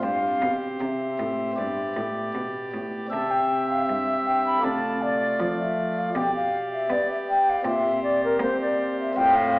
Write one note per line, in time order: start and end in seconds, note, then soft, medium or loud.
0.00 0.39 G2 medium
0.00 1.52 C4 soft
0.00 1.52 G4 soft
0.00 1.53 C5 soft
0.00 0.52 F5 medium
0.04 0.39 G2 soft
0.42 0.78 B2 medium
0.42 0.77 B2 soft
0.80 1.16 C3 medium
0.80 1.16 C3 soft
0.80 2.30 E5 medium
1.20 1.55 A2 soft
1.20 1.54 A2 soft
1.53 3.05 B3 soft
1.53 3.06 G4 soft
1.53 3.07 D5 soft
1.58 1.92 G2 soft
1.58 1.94 G2 medium
1.96 2.31 A2 soft
1.96 2.32 A2 medium
2.34 2.69 B2 soft
2.34 2.71 B2 medium
2.73 3.08 A2 soft
2.73 3.09 A2 medium
3.08 3.84 C3 soft
3.08 4.58 C4 soft
3.08 4.59 G4 soft
3.08 4.60 E5 soft
3.08 3.32 A5 medium
3.13 3.85 C3 medium
3.30 3.69 G5 medium
3.70 3.87 F5 medium
3.87 4.60 G2 soft
3.87 4.61 G2 medium
3.87 4.28 E5 medium
4.26 4.45 G5 medium
4.46 4.65 B5 medium
4.59 5.35 C3 soft
4.59 6.09 A3 soft
4.59 6.09 F4 soft
4.59 6.10 D5 soft
4.63 5.36 C3 medium
4.63 5.03 A5 medium
5.02 5.58 D5 medium
5.40 6.11 F3 medium
5.40 6.12 F3 soft
5.59 5.99 E5 medium
5.98 6.17 F5 medium
6.14 6.86 B2 medium
6.14 6.87 B2 soft
6.14 7.60 G4 soft
6.14 7.61 D5 soft
6.14 6.34 G5 medium
6.34 6.71 F5 medium
6.73 6.93 E5 medium
6.90 7.61 B3 medium
6.90 7.61 B3 soft
6.90 7.10 D5 medium
7.11 7.17 E5 medium
7.29 7.51 G5 medium
7.49 7.66 F5 medium
7.62 8.36 A#2 medium
7.62 9.11 C4 soft
7.62 9.11 G4 soft
7.62 9.12 C5 soft
7.62 8.02 E5 medium
7.67 8.37 A#2 medium
8.03 8.21 D5 medium
8.24 8.40 A#4 medium
8.40 9.12 A#3 medium
8.40 9.13 A#3 medium
8.40 8.59 C5 medium
8.61 8.97 D5 medium
8.99 9.18 E5 medium
9.14 9.59 A2 medium
9.14 9.59 C4 soft
9.14 9.59 F4 soft
9.14 9.59 C5 medium
9.14 9.36 G5 loud
9.18 9.59 A2 medium
9.35 9.59 F5 medium